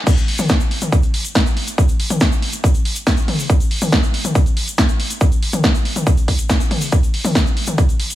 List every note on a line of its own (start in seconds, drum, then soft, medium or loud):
0.07 kick loud
0.07 closed hi-hat medium
0.07 crash loud
0.07 shaker medium
0.17 closed hi-hat soft
0.17 shaker soft
0.28 open hi-hat loud
0.38 open hi-hat medium
0.38 mid tom medium
0.38 shaker medium
0.49 kick loud
0.49 snare loud
0.49 closed hi-hat medium
0.49 shaker medium
0.60 closed hi-hat soft
0.60 shaker soft
0.71 open hi-hat loud
0.81 closed hi-hat medium
0.81 mid tom medium
0.81 shaker medium
0.92 kick loud
0.92 closed hi-hat medium
0.92 shaker medium
1.03 closed hi-hat soft
1.03 shaker soft
1.14 open hi-hat loud
1.25 closed hi-hat medium
1.25 shaker medium
1.35 kick loud
1.35 snare loud
1.35 closed hi-hat medium
1.35 shaker medium
1.46 closed hi-hat soft
1.46 shaker soft
1.57 open hi-hat loud
1.67 closed hi-hat medium
1.67 shaker medium
1.78 kick loud
1.78 closed hi-hat medium
1.78 shaker medium
1.89 closed hi-hat soft
1.89 shaker soft
2.00 open hi-hat loud
2.10 closed hi-hat medium
2.10 mid tom medium
2.10 shaker medium
2.20 kick loud
2.20 snare loud
2.20 closed hi-hat medium
2.20 shaker medium
2.32 closed hi-hat soft
2.32 shaker soft
2.42 open hi-hat loud
2.53 closed hi-hat medium
2.53 shaker medium
2.64 kick loud
2.64 closed hi-hat medium
2.64 shaker medium
2.74 closed hi-hat soft
2.74 shaker soft
2.85 open hi-hat loud
2.96 closed hi-hat medium
2.96 shaker medium
3.07 kick loud
3.07 snare loud
3.07 closed hi-hat medium
3.07 shaker medium
3.17 closed hi-hat soft
3.17 shaker soft
3.28 open hi-hat loud
3.28 mid tom medium
3.39 open hi-hat medium
3.39 shaker medium
3.50 kick loud
3.50 closed hi-hat medium
3.50 shaker medium
3.60 closed hi-hat soft
3.60 shaker soft
3.71 open hi-hat loud
3.81 open hi-hat medium
3.81 mid tom medium
3.81 shaker medium
3.92 kick loud
3.92 snare loud
3.92 closed hi-hat medium
3.92 shaker medium
4.03 closed hi-hat soft
4.03 shaker soft
4.14 open hi-hat loud
4.25 closed hi-hat soft
4.25 mid tom medium
4.25 shaker medium
4.35 kick loud
4.35 closed hi-hat medium
4.35 shaker medium
4.46 closed hi-hat soft
4.46 shaker soft
4.57 open hi-hat loud
4.68 closed hi-hat soft
4.68 shaker medium
4.78 kick loud
4.78 snare loud
4.78 closed hi-hat medium
4.78 shaker medium
4.89 closed hi-hat soft
4.89 shaker soft
5.00 open hi-hat loud
5.10 closed hi-hat medium
5.10 shaker medium
5.21 kick loud
5.21 closed hi-hat medium
5.21 shaker medium
5.32 closed hi-hat soft
5.32 shaker soft
5.43 open hi-hat loud
5.53 closed hi-hat medium
5.53 mid tom medium
5.53 shaker medium
5.64 kick loud
5.64 snare loud
5.64 closed hi-hat medium
5.64 shaker medium
5.75 closed hi-hat soft
5.75 shaker soft
5.85 open hi-hat loud
5.96 closed hi-hat soft
5.96 mid tom medium
5.96 shaker medium
6.07 kick loud
6.07 closed hi-hat medium
6.07 shaker medium
6.17 closed hi-hat soft
6.17 shaker soft
6.28 kick medium
6.28 open hi-hat loud
6.38 closed hi-hat soft
6.38 shaker medium
6.49 kick loud
6.49 snare loud
6.49 closed hi-hat soft
6.49 shaker medium
6.60 closed hi-hat soft
6.60 shaker soft
6.71 open hi-hat loud
6.71 mid tom medium
6.81 open hi-hat medium
6.81 shaker medium
6.92 kick loud
6.92 shaker medium
7.03 closed hi-hat soft
7.03 shaker soft
7.14 open hi-hat loud
7.25 open hi-hat medium
7.25 mid tom medium
7.25 shaker medium
7.35 kick loud
7.35 snare loud
7.35 closed hi-hat medium
7.35 shaker medium
7.46 closed hi-hat soft
7.46 shaker soft
7.57 open hi-hat loud
7.67 closed hi-hat soft
7.67 mid tom medium
7.67 shaker medium
7.78 kick loud
7.78 closed hi-hat medium
7.78 shaker medium
7.89 closed hi-hat soft
7.89 shaker soft
8.00 open hi-hat loud
8.10 closed hi-hat medium
8.10 shaker medium